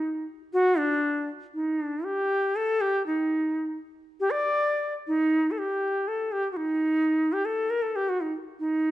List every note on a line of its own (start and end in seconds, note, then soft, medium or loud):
0.00 0.25 D#4 medium
0.53 0.80 F#4 loud
0.78 1.29 D4 loud
1.54 1.81 D#4 medium
1.81 2.06 D4 medium
2.04 2.57 G4 loud
2.56 2.82 A4 loud
2.81 3.06 G4 loud
3.06 3.77 D#4 medium
4.20 4.33 G4 loud
4.32 4.94 D5 loud
5.07 5.53 D#4 loud
5.51 5.60 A4 medium
5.58 6.09 G4 medium
6.08 6.33 A4 medium
6.32 6.51 G4 loud
6.52 6.59 F#4 medium
6.57 7.34 D#4 loud
7.33 7.47 G4 loud
7.45 7.72 A4 medium
7.70 7.83 A#4 loud
7.82 7.97 A4 medium
7.96 8.10 G4 medium
8.09 8.22 F#4 medium
8.21 8.33 D#4 medium
8.59 8.91 D#4 medium